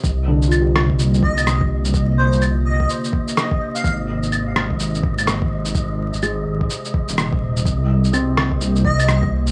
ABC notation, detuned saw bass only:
X:1
M:4/4
L:1/16
Q:"Swing 16ths" 1/4=126
K:Cm
V:1 name="Detuned saw bass" clef=bass
C,,6 C,,2 C,,8- | C,,3 C,,3 C,,2 z8 | A,,,6 A,,,2 A,,,8- | A,,,3 A,,,3 A,,,2 z3 E,,,4- E,,, |
C,,6 C,,2 C,,8 |]